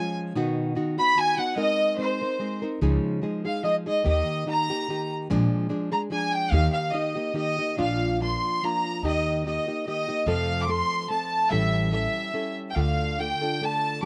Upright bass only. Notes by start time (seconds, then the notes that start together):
2.81 C#2
4.06 D#2
5.30 A#1
6.52 D#2
7.79 A#1
9.03 D#2
10.26 F2
11.51 A1
12.76 D2